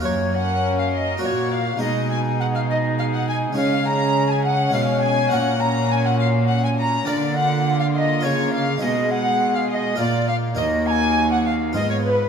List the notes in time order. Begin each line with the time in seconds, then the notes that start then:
0.00 F#2 A#3 C#4 F#4 A#4 C#5
0.04 F#2 C#5
0.33 F#5
0.79 F5
0.93 D#5 F5
0.98 D#5
1.17 A#3 F#4 C#5
1.21 A#2 F#4 C#5 D#5
1.26 C#5
1.52 F5
1.77 B2 G#3 D#4 G#4 D#5
1.81 B2
2.11 G#5
2.40 F#5
2.55 F5
2.69 D#5
2.98 F5
3.14 F#5
3.28 G#5
3.53 G#3 C#4 G#4 F5
3.57 C#3 F5
3.86 A#5
4.30 G#5
4.44 F#5
4.70 G#3 C#4 G#4
4.74 B2 F5
5.02 G#5
5.30 A#2 C#4 F#4 A#4 F#5
5.60 A#5
5.91 G#5
6.05 F#5
6.19 F5
6.47 F#5
6.64 G#5
6.78 A#5
7.05 D3 A#3 D4 F4 A#4 D5
7.36 F#5
7.80 F5
7.94 D#5 F5
8.21 C#3 F4 A#4 C#5
8.52 F5
8.78 G#3 D#4 G#4 D#5
8.82 B2 D#5
9.11 F#5
9.55 F5
9.69 D#5 F5
9.74 D#5
9.96 A#2 A#3 F4 A#4 D5
10.28 F5
10.55 D#2 D#4 F#4 A#4 D#5
10.87 G#5 A#5
10.91 G#5
11.31 F#5
11.45 F5
11.73 G#2 B3 F4 G#4 D#5
11.90 C#5
12.05 B4 C#5
12.09 B4